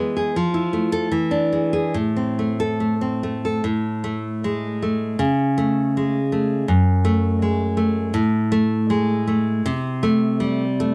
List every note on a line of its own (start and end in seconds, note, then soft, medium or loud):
0.00 0.31 E3 medium
0.00 0.35 G#3 soft
0.00 0.35 B3 medium
0.17 0.35 G#4 medium
0.36 1.10 F3 medium
0.54 1.12 E4 soft
0.73 1.12 A3 soft
0.92 1.12 A4 medium
1.11 1.92 E3 medium
1.31 1.95 D4 soft
1.52 1.95 G#3 soft
1.73 1.95 G#4 medium
1.94 3.60 A2 medium
2.16 3.00 C4 soft
2.39 2.79 A3 soft
2.60 2.93 A4 medium
2.80 3.22 A3 soft
3.01 3.64 C4 soft
3.23 3.65 A3 soft
3.45 3.65 A4 soft
3.64 5.15 A2 medium
4.04 4.66 A3 medium
4.44 5.20 G#3 soft
4.82 5.20 A3 soft
5.19 6.65 C#3 medium
5.58 6.18 A3 medium
5.97 6.70 G#3 soft
6.32 6.69 A3 soft
6.68 8.10 F#2 medium
7.05 7.63 A3 medium
7.42 8.15 G#3 soft
7.77 8.14 A3 medium
8.14 9.61 A2 medium
8.52 9.12 A3 medium
8.90 9.65 G#3 medium
9.27 9.65 A3 medium
9.66 10.95 C3 medium
10.03 10.63 A3 medium
10.40 10.95 G3 medium
10.80 10.95 A3 medium